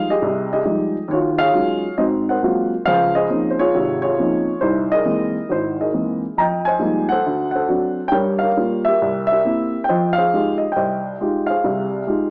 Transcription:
0.00 0.49 C5 medium
0.00 0.11 F5 loud
0.10 0.52 G4 medium
0.10 0.52 G#4 medium
0.10 0.51 D#5 medium
0.22 0.60 C2 medium
0.22 0.60 C3 medium
0.53 1.07 G4 medium
0.53 1.07 G#4 medium
0.53 1.07 D#5 medium
0.65 0.96 F3 soft
0.65 0.96 G3 soft
0.65 0.97 G#3 soft
0.65 0.96 D#4 medium
1.08 1.47 D#2 medium
1.08 1.18 C#5 medium
1.13 1.52 F4 medium
1.13 1.95 F#4 medium
1.39 1.94 G#4 medium
1.39 1.95 C#5 medium
1.39 1.93 F5 loud
1.53 1.84 F#3 medium
1.53 1.85 G#3 soft
1.53 1.85 C#4 soft
1.53 1.85 D#4 soft
1.53 1.85 F4 soft
1.98 2.36 G#2 medium
1.98 2.36 C4 medium
1.98 2.82 F#4 soft
1.98 2.29 C5 medium
1.98 2.04 D#5 medium
2.29 2.83 A#4 soft
2.29 2.83 C5 medium
2.29 2.69 F#5 medium
2.43 2.73 F#3 medium
2.43 2.73 G#3 soft
2.43 2.73 A#3 soft
2.43 2.73 C4 soft
2.43 2.73 F4 medium
2.86 3.25 C#2 medium
2.86 3.24 F3 medium
2.86 3.15 G#4 medium
2.86 3.15 C5 medium
2.86 3.13 F5 loud
3.15 3.59 G#4 medium
3.15 3.49 C5 medium
3.15 3.51 D#5 medium
3.30 3.61 F3 soft
3.30 3.60 A#3 soft
3.30 3.61 C4 soft
3.30 3.61 C#4 soft
3.30 3.61 D#4 soft
3.51 3.59 C5 medium
3.59 4.03 F4 medium
3.59 4.02 G#4 medium
3.59 4.01 C#5 loud
3.75 4.12 G#1 medium
3.75 4.12 C3 medium
4.02 4.58 F4 medium
4.02 4.58 G#4 medium
4.02 4.63 C#5 medium
4.19 4.49 F3 soft
4.19 4.49 A#3 soft
4.19 4.49 C4 soft
4.19 4.49 C#4 soft
4.19 4.50 D#4 medium
4.61 5.00 C2 medium
4.61 5.46 D#4 medium
4.61 5.46 E4 medium
4.61 4.88 C5 medium
4.92 5.76 G#4 medium
4.92 5.75 A#4 medium
4.92 5.51 D#5 loud
5.05 5.36 E3 soft
5.05 5.36 G#3 soft
5.05 5.36 A#3 soft
5.05 5.36 C4 medium
5.49 5.87 G#1 medium
5.49 6.34 D#4 medium
5.49 6.34 E4 soft
5.49 5.77 C5 medium
5.80 6.34 G#4 soft
5.80 6.34 A#4 soft
5.80 6.20 D#5 medium
5.93 6.24 E3 soft
5.93 6.24 G#3 soft
5.93 6.24 A#3 soft
5.93 6.24 C4 soft
6.37 6.75 F2 medium
6.37 6.66 D#5 medium
6.37 7.22 G5 medium
6.37 6.44 A#5 medium
6.65 7.10 C5 medium
6.65 7.21 D#5 medium
6.65 7.11 G#5 medium
6.79 7.10 F3 soft
6.79 7.11 G3 soft
6.79 7.11 G#3 soft
6.79 7.11 A#3 soft
6.79 7.11 D#4 medium
7.09 7.54 A4 medium
7.09 7.54 C5 medium
7.09 7.50 F#5 medium
7.26 7.63 D2 medium
7.51 8.09 C5 medium
7.51 8.13 F#5 medium
7.56 8.09 A4 medium
7.68 7.99 F#3 medium
7.68 8.00 C4 soft
7.68 8.00 D4 medium
8.08 8.50 G2 medium
8.08 8.50 G3 medium
8.08 8.15 G5 medium
8.12 8.42 A#4 medium
8.12 8.41 C#5 medium
8.39 8.96 C#5 medium
8.39 8.81 F5 medium
8.43 8.88 A#4 medium
8.57 8.87 G3 soft
8.57 8.88 A#3 soft
8.57 8.88 F4 soft
8.85 9.31 G4 medium
8.85 9.26 E5 loud
8.90 9.31 A#4 medium
9.02 9.39 C2 medium
9.27 9.83 E5 medium
9.32 9.85 G4 medium
9.32 9.85 A#4 medium
9.45 9.75 A#3 soft
9.45 9.75 C4 soft
9.45 9.75 E4 medium
9.84 10.16 G5 medium
9.89 10.27 F2 medium
9.89 10.27 F3 medium
9.89 10.17 C5 medium
9.89 10.57 D#5 medium
10.13 10.56 F5 medium
10.18 11.01 G#4 medium
10.18 10.75 C5 medium
10.34 10.63 G#3 medium
10.34 10.63 D#4 soft
10.34 10.64 F4 soft
10.34 10.64 G4 medium
10.58 10.75 D#5 medium
10.72 11.43 G5 medium
10.76 11.14 C2 medium
10.76 11.49 C5 medium
10.76 11.60 D#5 medium
11.20 11.51 G#3 soft
11.20 11.51 D#4 soft
11.20 11.51 F4 soft
11.20 11.51 G4 medium
11.46 12.30 G#4 medium
11.46 12.30 C5 soft
11.46 12.30 F5 medium
11.64 12.02 C2 medium
11.64 12.02 C3 medium
12.07 12.30 G#3 soft
12.07 12.30 D#4 soft
12.07 12.30 F4 soft
12.07 12.30 G4 soft

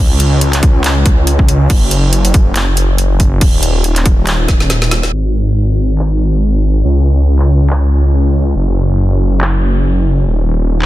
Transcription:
0.00 1.68 C#2 medium
0.20 closed hi-hat medium
0.41 closed hi-hat medium
0.53 clap soft
0.53 closed hi-hat medium
0.63 kick loud
0.63 closed hi-hat medium
0.84 clap loud
0.84 closed hi-hat medium
1.06 kick loud
1.06 closed hi-hat medium
1.27 closed hi-hat medium
1.39 kick medium
1.48 closed hi-hat medium
1.70 3.39 F#1 medium
1.70 kick loud
1.70 closed hi-hat medium
1.70 crash soft
1.91 closed hi-hat medium
2.13 closed hi-hat medium
2.25 closed hi-hat medium
2.34 kick loud
2.34 closed hi-hat medium
2.56 clap loud
2.56 closed hi-hat medium
2.77 closed hi-hat medium
2.98 closed hi-hat medium
3.20 kick medium
3.20 closed hi-hat medium
3.41 5.11 D#1 medium
3.41 kick loud
3.41 closed hi-hat medium
3.41 crash medium
3.63 closed hi-hat medium
3.84 closed hi-hat medium
3.96 clap soft
3.96 closed hi-hat medium
4.06 kick loud
4.06 closed hi-hat medium
4.27 clap loud
4.27 closed hi-hat medium
4.48 kick loud
4.48 snare medium
4.48 closed hi-hat medium
4.60 snare medium
4.70 snare medium
4.70 closed hi-hat medium
4.82 snare medium
4.91 snare loud
4.91 closed hi-hat medium
5.03 snare medium
5.13 6.82 G#1 medium
5.13 crash medium
5.99 clap loud
6.84 8.54 C#2 medium
7.39 clap soft
7.70 clap loud
8.56 10.25 F#1 medium
9.41 clap loud
10.27 10.86 D#1 medium
10.82 clap soft

